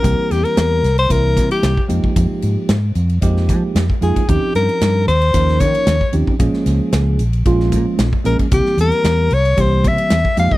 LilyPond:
<<
  \new Staff \with { instrumentName = "Soprano saxophone" } { \time 4/4 \key c \phrygian \tempo 4 = 113 bes'8 g'16 bes'4 c''16 bes'8. g'8. r8 | r2. r8 aes'8 | g'8 bes'4 c''4 des''4 r8 | r2. r8 bes'8 |
g'8 bes'4 des''8 c''8 e''4 f''8 | }
  \new Staff \with { instrumentName = "Tine electric piano" } { \time 4/4 \key c \phrygian <e g bes c' g'>4. r8 <e g bes c' e'>4 r8 <f aes bes ees' g'>8~ | <f aes bes ees' g'>4 r4 <f aes bes ees' g'>4 r8 <f aes bes ees' f'>8 | <f c' des' ees' g'>4. r8 <f bes des' ees' bes'>4 r8 <f c' des' ees' g'>8 | <f aes bes des' aes'>4. r8 <f aes bes des' f'>4 r8 <f aes bes des' aes'>8 |
<e g bes c' g'>4. r8 <e g bes c' g'>4 r8 <f aes bes ees' g'>8 | }
  \new Staff \with { instrumentName = "Fingered electric bass" } { \clef bass \time 4/4 \key c \phrygian c,16 r16 e,16 r16 e,8 c,8 c,8 c16 r16 c,16 r16 f,16 r16 | f,16 r16 aes,16 r16 aes,8 f,8 f,8 f16 r16 f,16 r16 f,16 r16 | ees,16 r16 g,16 r16 g,8 ees,8 ees,8 ees16 r16 ees,16 r16 ees,16 r16 | bes,,16 r16 des,16 r16 des,8 bes,,8 bes,,8 bes,16 r16 bes,,16 r16 bes,,16 r16 |
c,16 r16 e,16 r16 e,8 c,8 c,8 c16 r16 e,16 r16 f,16 r16 | }
  \new DrumStaff \with { instrumentName = "Drums" } \drummode { \time 4/4 <hhp bd cymr>8 <hhp cymr sn>16 cymr16 <hhp cymr sn>8 <hhp cymr sn>16 cymr16 <hhp bd cymr>8 <hhp bd cymr>16 cymr16 <hhp cymr sn>16 bd16 <hhp cymr>16 bd16 | <hhp bd cymr>8 <hhp cymr>8 <hhp cymr sn>8 <hhp cymr>16 cymr16 <hhp bd cymr>16 sn16 <hhp bd cymr>8 <hhp cymr sn>16 bd16 <hhp cymr>16 <bd cymr>16 | <hhp bd cymr>8 <hhp cymr sn>16 cymr16 <hhp cymr sn>8 <hhp cymr>16 cymr16 <hhp bd cymr>16 sn16 <hhp bd cymr>16 cymr16 <hhp cymr sn>16 bd16 <hhp cymr>16 bd16 | <hhp bd cymr>16 sn16 <hhp cymr sn>8 <hhp cymr sn>8 <hhp cymr>16 cymr16 <hhp bd cymr>16 sn16 <hhp bd cymr>8 <hhp cymr sn>16 bd16 <hhp cymr>16 <bd cymr>16 |
<hhp bd cymr>16 sn16 <hhp cymr>16 cymr16 <hhp cymr sn>8 <hhp cymr>16 cymr16 <hhp bd cymr>8 <hhp bd cymr>16 cymr16 <hhp cymr sn>16 bd16 <hhp cymr>16 bd16 | }
>>